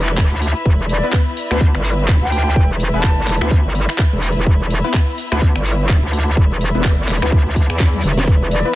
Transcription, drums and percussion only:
0.08 finger snap, cabasa
0.17 kick, clap, cabasa
0.32 cabasa
0.42 open hi-hat, cabasa
0.55 cabasa
0.65 kick, cabasa
0.79 cabasa
0.89 open hi-hat, cabasa
1.03 cabasa
1.13 kick, clap, cabasa
1.27 cabasa
1.37 open hi-hat, cabasa
1.51 finger snap, cabasa
1.61 kick, cabasa
1.75 finger snap, cabasa
1.85 open hi-hat, cabasa
1.99 cabasa
2.08 kick, clap, cabasa
2.23 cabasa
2.31 open hi-hat, cabasa
2.46 cabasa
2.56 kick, cabasa
2.70 cabasa
2.80 open hi-hat, cabasa
2.93 cabasa
3.03 kick, clap, cabasa
3.17 cabasa
3.27 clap, open hi-hat, cabasa
3.41 finger snap, cabasa
3.51 kick, cabasa
3.65 cabasa
3.75 open hi-hat, cabasa
3.89 finger snap, cabasa
3.98 kick, clap, cabasa
4.13 cabasa
4.22 open hi-hat, cabasa
4.36 cabasa
4.46 kick, cabasa
4.60 cabasa
4.70 open hi-hat, cabasa
4.85 cabasa
4.94 kick, clap, cabasa
5.08 cabasa
5.18 open hi-hat, cabasa
5.32 finger snap, cabasa
5.41 kick, cabasa
5.55 finger snap, cabasa
5.66 open hi-hat, cabasa
5.79 cabasa
5.89 kick, clap, cabasa
6.02 cabasa
6.13 open hi-hat, cabasa
6.27 cabasa
6.36 kick, cabasa
6.51 cabasa
6.61 open hi-hat, cabasa
6.75 cabasa
6.84 kick, clap, cabasa
6.98 cabasa
7.08 clap, open hi-hat, cabasa
7.22 finger snap, cabasa
7.32 kick, cabasa
7.46 cabasa
7.55 kick, open hi-hat, cabasa
7.70 finger snap, cabasa
7.79 kick, snare, clap, cabasa
7.94 high tom, cabasa
8.04 open hi-hat, mid tom, cabasa
8.17 snare, cabasa
8.27 kick, cabasa
8.41 cabasa
8.51 open hi-hat, cabasa
8.66 cabasa

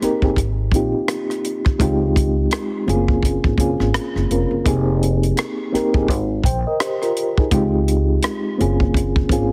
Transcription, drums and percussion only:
0.02 cross-stick, closed hi-hat
0.22 kick
0.36 kick, closed hi-hat
0.72 kick, closed hi-hat
1.08 cross-stick, closed hi-hat
1.30 cross-stick, closed hi-hat
1.45 closed hi-hat
1.65 kick, cross-stick
1.80 kick, closed hi-hat
2.16 kick, closed hi-hat
2.51 cross-stick, closed hi-hat
2.89 closed hi-hat
3.08 kick
3.23 kick, closed hi-hat
3.44 kick
3.58 kick, closed hi-hat
3.80 cross-stick
3.94 cross-stick, closed hi-hat
4.16 cross-stick
4.31 closed hi-hat
4.66 kick, closed hi-hat
5.03 closed hi-hat
5.23 closed hi-hat
5.37 cross-stick, closed hi-hat
5.75 cross-stick, closed hi-hat
5.94 kick
6.08 kick, closed hi-hat
6.44 kick, closed hi-hat
6.80 cross-stick, closed hi-hat
7.02 cross-stick, closed hi-hat
7.17 closed hi-hat
7.38 kick
7.51 kick, closed hi-hat
7.88 closed hi-hat
8.23 cross-stick, closed hi-hat
8.61 closed hi-hat
8.80 kick
8.94 kick, closed hi-hat
9.16 kick
9.29 kick, closed hi-hat

